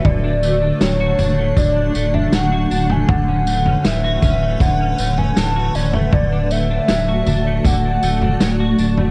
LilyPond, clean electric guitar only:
\new Staff \with { instrumentName = "Clean electric guitar" } { \time 4/4 \key d \major \tempo 4 = 79 d16 d'16 a16 d'16 fis16 fis'16 d'16 a16 d16 d'16 a16 d'16 fis16 fis'16 d'16 a16 | d16 cis'16 a16 cis'16 e16 fis'16 cis'16 a16 d16 cis'16 a16 cis'16 e16 fis'16 cis'16 a16 | d16 d'16 a16 d'16 fis16 fis'16 d'16 a16 d16 d'16 a16 d'16 fis16 fis'16 d'16 a16 | }